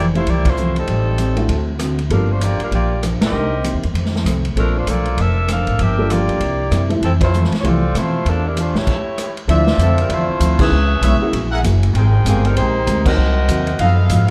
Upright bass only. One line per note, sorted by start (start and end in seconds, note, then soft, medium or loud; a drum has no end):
0.00 0.24 F1 medium
0.26 0.85 C2 medium
0.88 1.46 A1 medium
1.49 2.07 D2 medium
2.10 2.56 G1 medium
2.59 muted upright bass stroke soft
2.71 3.17 A#1 medium
3.20 3.31 A#1 medium
3.32 3.71 C2 medium
3.74 3.83 D#2 medium
3.84 3.93 E2 medium
3.94 4.23 F2 medium
4.24 4.54 C2 medium
4.55 4.84 A#1 medium
4.87 5.15 B1 medium
5.17 5.64 F1 medium
5.67 5.78 G#1 medium
5.79 6.25 G1 medium
6.28 6.39 B1 medium
6.40 6.69 C2 medium
6.71 7.00 F#2 medium
7.01 7.48 F2 medium
7.51 muted upright bass stroke soft
7.63 7.92 C2 medium
7.94 8.23 B2 medium
8.25 8.71 E2 medium
8.74 8.86 A#1 medium
9.48 9.77 D2 medium
9.78 10.08 F2 medium
10.09 10.27 E2 medium
10.28 muted upright bass stroke soft
10.40 10.70 D2 medium
10.71 11.00 C#2 medium
11.01 11.19 B1 medium
11.20 muted upright bass stroke soft
11.32 11.62 A#1 medium
11.63 11.93 F#1 medium
11.93 12.24 G#1 medium
12.25 12.55 G1 loud
12.56 12.86 A#1 medium
12.87 13.16 D2 loud
13.17 13.47 C2 medium
13.48 13.78 D#2 medium
13.79 14.09 F#2 medium
14.10 14.30 G#2 medium